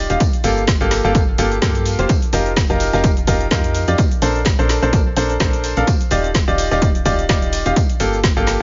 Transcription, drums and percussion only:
0.10 closed hi-hat medium
0.10 closed hi-hat soft
0.10 cabasa soft
0.20 kick loud
0.20 closed hi-hat medium
0.20 tambourine loud
0.20 cabasa soft
0.33 closed hi-hat soft
0.33 cabasa soft
0.44 open hi-hat loud
0.44 tambourine medium
0.44 cabasa medium
0.57 cabasa soft
0.67 kick loud
0.67 snare loud
0.67 closed hi-hat medium
0.67 tambourine medium
0.67 cabasa soft
0.81 cabasa soft
0.91 snare medium
0.91 open hi-hat loud
0.91 tambourine medium
0.91 cabasa medium
1.05 cabasa soft
1.15 kick loud
1.15 closed hi-hat medium
1.15 tambourine medium
1.15 cabasa soft
1.38 open hi-hat loud
1.38 tambourine medium
1.38 cabasa medium
1.52 closed hi-hat soft
1.52 cabasa soft
1.62 kick loud
1.62 snare loud
1.62 closed hi-hat medium
1.62 tambourine medium
1.62 cabasa soft
1.75 closed hi-hat medium
1.75 cabasa soft
1.86 open hi-hat loud
1.86 tambourine medium
1.86 cabasa medium
1.99 closed hi-hat medium
1.99 cabasa soft
2.09 kick loud
2.09 closed hi-hat medium
2.09 tambourine loud
2.09 cabasa soft
2.22 closed hi-hat soft
2.22 cabasa soft
2.33 open hi-hat loud
2.33 tambourine medium
2.33 cabasa medium
2.46 closed hi-hat soft
2.46 cabasa soft
2.56 kick loud
2.56 snare loud
2.56 closed hi-hat medium
2.56 tambourine medium
2.56 cabasa soft
2.70 cabasa soft
2.80 open hi-hat loud
2.80 tambourine medium
2.80 cabasa medium
2.93 snare soft
2.93 closed hi-hat soft
2.93 cabasa soft
3.04 kick loud
3.04 closed hi-hat medium
3.04 tambourine medium
3.04 cabasa soft
3.17 closed hi-hat soft
3.17 cabasa soft
3.27 kick medium
3.27 open hi-hat loud
3.27 tambourine medium
3.27 cabasa medium
3.41 closed hi-hat soft
3.41 cabasa soft
3.51 kick loud
3.51 snare loud
3.51 closed hi-hat medium
3.51 tambourine medium
3.51 cabasa soft
3.64 closed hi-hat medium
3.64 cabasa soft
3.75 open hi-hat loud
3.75 tambourine medium
3.75 cabasa medium
3.88 closed hi-hat medium
3.88 closed hi-hat soft
3.88 cabasa soft
3.98 kick loud
3.98 closed hi-hat medium
3.98 tambourine medium
3.98 cabasa soft
4.11 closed hi-hat soft
4.11 cabasa soft
4.22 open hi-hat loud
4.22 tambourine medium
4.22 cabasa medium
4.35 cabasa soft
4.45 kick loud
4.45 snare loud
4.45 closed hi-hat medium
4.45 tambourine medium
4.45 cabasa soft
4.59 cabasa soft
4.69 snare medium
4.69 open hi-hat loud
4.69 tambourine medium
4.69 cabasa medium
4.83 cabasa soft
4.93 kick loud
4.93 closed hi-hat medium
4.93 tambourine medium
4.93 cabasa soft
5.16 open hi-hat loud
5.16 tambourine medium
5.16 cabasa medium
5.30 closed hi-hat soft
5.30 cabasa soft
5.40 kick loud
5.40 snare loud
5.40 closed hi-hat medium
5.40 tambourine medium
5.40 cabasa soft
5.53 closed hi-hat medium
5.53 cabasa soft
5.64 open hi-hat loud
5.64 tambourine medium
5.64 cabasa medium
5.77 closed hi-hat medium
5.77 cabasa soft
5.87 kick loud
5.87 closed hi-hat medium
5.87 tambourine medium
5.87 cabasa soft
6.01 closed hi-hat soft
6.01 cabasa soft
6.11 open hi-hat loud
6.11 tambourine medium
6.11 cabasa medium
6.24 closed hi-hat soft
6.24 cabasa soft
6.34 kick loud
6.34 snare loud
6.34 closed hi-hat medium
6.34 tambourine medium
6.34 cabasa soft
6.48 cabasa soft
6.58 open hi-hat loud
6.58 tambourine medium
6.58 cabasa medium
6.71 snare soft
6.71 closed hi-hat soft
6.71 cabasa soft
6.82 kick loud
6.82 closed hi-hat medium
6.82 tambourine medium
6.82 cabasa soft
6.95 closed hi-hat soft
6.95 cabasa soft
7.06 kick medium
7.06 open hi-hat loud
7.06 tambourine medium
7.06 cabasa medium
7.19 closed hi-hat soft
7.19 cabasa soft
7.29 kick loud
7.29 snare loud
7.29 closed hi-hat medium
7.29 tambourine medium
7.29 cabasa soft
7.42 closed hi-hat medium
7.42 cabasa soft
7.53 open hi-hat loud
7.53 tambourine medium
7.53 cabasa medium
7.66 closed hi-hat soft
7.66 closed hi-hat medium
7.66 cabasa soft
7.76 kick loud
7.76 closed hi-hat medium
7.76 tambourine medium
7.76 cabasa soft
7.90 closed hi-hat soft
7.90 cabasa soft
8.00 open hi-hat loud
8.00 tambourine medium
8.00 cabasa medium
8.13 cabasa soft
8.24 kick loud
8.24 snare loud
8.24 closed hi-hat medium
8.24 tambourine medium
8.24 cabasa soft
8.37 cabasa soft
8.46 snare medium
8.46 open hi-hat loud
8.46 tambourine medium
8.46 cabasa medium

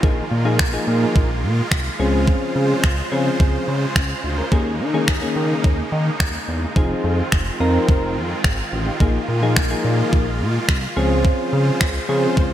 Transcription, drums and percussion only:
0.03 kick loud
0.59 finger snap loud
0.59 kick loud
1.16 kick loud
1.71 finger snap loud
1.71 kick loud
2.28 kick loud
2.84 finger snap loud
2.84 kick loud
3.40 kick loud
3.96 finger snap loud
3.96 kick loud
4.52 kick loud
5.08 finger snap loud
5.08 kick loud
5.64 kick loud
6.20 finger snap loud
6.20 kick loud
6.76 kick loud
7.32 finger snap loud
7.32 kick loud
7.89 kick loud
8.44 finger snap loud
8.44 kick loud
9.00 kick loud
9.56 finger snap loud
9.56 kick loud
10.13 kick loud
10.69 finger snap loud
10.69 kick loud
11.25 kick loud
11.81 finger snap loud
11.81 kick loud
12.37 kick loud

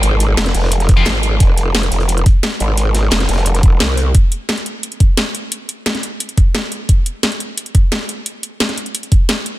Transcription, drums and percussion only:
0.03 closed hi-hat medium
0.20 closed hi-hat medium
0.37 snare loud
0.37 closed hi-hat medium
0.46 snare soft
0.46 snare medium
0.46 closed hi-hat soft
0.54 closed hi-hat medium
0.54 open hi-hat medium
0.63 snare medium
0.71 closed hi-hat medium
0.80 snare soft
0.80 closed hi-hat soft
0.89 kick loud
0.89 closed hi-hat medium
1.05 snare loud
1.05 closed hi-hat medium
1.23 closed hi-hat medium
1.40 kick loud
1.40 closed hi-hat medium
1.57 closed hi-hat medium
1.75 snare loud
1.75 closed hi-hat medium
1.83 closed hi-hat soft
1.92 closed hi-hat medium
2.00 closed hi-hat soft
2.08 closed hi-hat medium
2.17 closed hi-hat soft
2.26 kick loud
2.26 closed hi-hat medium
2.43 snare loud
2.43 closed hi-hat medium
2.60 closed hi-hat medium
2.77 closed hi-hat medium
2.94 snare medium
2.94 closed hi-hat medium
3.11 snare medium
3.11 snare loud
3.11 closed hi-hat medium
3.20 snare soft
3.20 snare medium
3.20 closed hi-hat soft
3.28 snare medium
3.28 closed hi-hat medium
3.32 snare medium
3.32 closed hi-hat medium
3.37 snare loud
3.37 closed hi-hat medium
3.45 closed hi-hat medium
3.54 snare soft
3.54 closed hi-hat soft
3.63 kick loud
3.63 closed hi-hat medium
3.80 snare loud
3.80 closed hi-hat medium
3.97 closed hi-hat medium
4.15 kick loud
4.15 closed hi-hat medium
4.32 closed hi-hat medium
4.49 snare loud
4.49 closed hi-hat medium
4.57 closed hi-hat soft
4.66 closed hi-hat medium
4.83 closed hi-hat medium
4.92 closed hi-hat soft
5.00 kick loud
5.00 closed hi-hat medium
5.17 snare loud
5.17 closed hi-hat medium
5.35 closed hi-hat medium
5.52 closed hi-hat medium
5.69 closed hi-hat medium
5.86 snare loud
5.86 closed hi-hat medium
5.95 snare soft
5.95 closed hi-hat soft
6.03 closed hi-hat medium
6.20 closed hi-hat medium
6.29 closed hi-hat soft
6.37 kick loud
6.37 closed hi-hat medium
6.55 snare loud
6.55 closed hi-hat medium
6.72 closed hi-hat medium
6.89 kick loud
6.89 closed hi-hat medium
7.06 closed hi-hat medium
7.23 snare loud
7.23 closed hi-hat medium
7.32 closed hi-hat soft
7.40 closed hi-hat medium
7.58 closed hi-hat medium
7.66 closed hi-hat soft
7.75 kick loud
7.75 closed hi-hat medium
7.92 snare loud
7.92 closed hi-hat medium
8.09 closed hi-hat medium
8.26 closed hi-hat medium
8.43 closed hi-hat medium
8.60 snare loud
8.60 closed hi-hat medium
8.69 snare soft
8.69 closed hi-hat soft
8.78 closed hi-hat medium
8.86 closed hi-hat soft
8.95 closed hi-hat medium
9.03 closed hi-hat soft
9.12 kick loud
9.12 closed hi-hat medium
9.29 snare loud
9.29 closed hi-hat loud
9.46 closed hi-hat medium

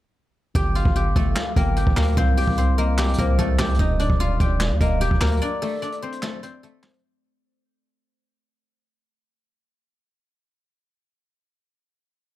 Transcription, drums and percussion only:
0.55 kick loud
0.55 closed hi-hat medium
0.75 closed hi-hat medium
0.85 kick loud
0.95 closed hi-hat medium
1.16 kick loud
1.16 closed hi-hat medium
1.36 snare loud
1.36 clap medium
1.56 kick loud
1.56 closed hi-hat medium
1.76 closed hi-hat medium
1.87 kick medium
1.97 snare loud
1.97 clap medium
2.02 closed hi-hat medium
2.07 closed hi-hat medium
2.12 closed hi-hat soft
2.17 kick loud
2.17 closed hi-hat medium
2.37 open hi-hat medium
2.48 kick loud
2.57 closed hi-hat medium
2.78 closed hi-hat medium
2.98 snare loud
2.98 clap medium
3.03 closed hi-hat medium
3.08 closed hi-hat medium
3.13 closed hi-hat medium
3.19 kick loud
3.19 closed hi-hat loud
3.39 kick medium
3.39 closed hi-hat medium
3.59 kick medium
3.59 snare loud
3.59 clap medium
3.64 closed hi-hat medium
3.69 closed hi-hat medium
3.74 closed hi-hat medium
3.79 kick loud
3.79 closed hi-hat medium
3.99 closed hi-hat medium
4.10 kick loud
4.20 closed hi-hat medium
4.40 kick loud
4.40 closed hi-hat medium
4.60 snare loud
4.60 clap medium
4.81 kick loud
4.81 closed hi-hat loud
5.01 closed hi-hat medium
5.11 kick loud
5.21 snare loud
5.21 clap medium
5.26 closed hi-hat medium
5.31 closed hi-hat medium
5.36 closed hi-hat soft
5.41 closed hi-hat medium
5.62 open hi-hat medium
5.82 closed hi-hat soft
5.92 closed hi-hat medium
6.02 closed hi-hat soft
6.12 closed hi-hat medium
6.22 snare loud
6.22 clap medium
6.43 closed hi-hat medium
6.63 closed hi-hat medium
6.83 snare loud
6.83 clap medium
6.88 closed hi-hat medium
6.93 closed hi-hat medium
6.99 closed hi-hat soft

